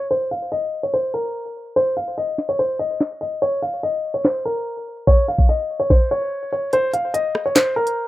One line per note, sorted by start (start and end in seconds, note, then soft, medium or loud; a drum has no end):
0.11 0.29 C5 medium
0.11 closed hi-hat medium
0.31 0.49 F5 medium
0.31 closed hi-hat medium
0.52 0.81 D#5 medium
0.52 closed hi-hat medium
0.83 0.92 C#5 medium
0.94 1.11 C5 medium
0.94 closed hi-hat medium
1.14 1.72 A#4 medium
1.25 closed hi-hat medium
1.45 closed hi-hat medium
1.66 closed hi-hat medium
1.76 1.94 C5 loud
1.76 closed hi-hat medium
1.97 2.15 F5 medium
1.97 closed hi-hat medium
2.07 closed hi-hat medium
2.18 2.47 D#5 medium
2.38 snare medium
2.38 closed hi-hat medium
2.49 2.58 C#5 medium
2.59 2.77 C5 medium
2.59 closed hi-hat medium
2.79 3.18 D#5 medium
2.90 closed hi-hat medium
3.01 snare loud
3.01 clap medium
3.21 3.39 D#5 medium
3.21 closed hi-hat medium
3.42 3.60 C#5 medium
3.42 closed hi-hat medium
3.62 3.80 F5 medium
3.62 closed hi-hat medium
3.83 4.12 D#5 medium
3.83 closed hi-hat medium
4.14 4.23 C#5 medium
4.25 4.42 C5 medium
4.25 snare loud
4.25 clap loud
4.45 5.04 A#4 medium
4.56 closed hi-hat medium
4.76 closed hi-hat medium
4.97 closed hi-hat medium
5.07 5.25 C#5 loud
5.07 kick loud
5.07 closed hi-hat medium
5.28 5.46 F5 medium
5.28 closed hi-hat medium
5.38 kick loud
5.38 closed hi-hat medium
5.49 5.78 D#5 medium
5.69 closed hi-hat medium
5.80 5.89 C#5 medium
5.90 6.08 C5 medium
5.90 kick loud
5.90 snare medium
6.11 6.50 C#5 medium
6.53 6.70 C#5 medium
6.73 6.91 C5 loud
6.73 closed hi-hat medium
6.93 7.11 F5 medium
6.93 closed hi-hat medium
7.14 7.43 D#5 medium
7.14 closed hi-hat medium
7.35 cross-stick loud
7.46 7.54 C#5 medium
7.56 7.74 C5 medium
7.56 snare loud
7.56 clap loud
7.56 closed hi-hat medium
7.76 8.08 A#4 medium
7.87 closed hi-hat medium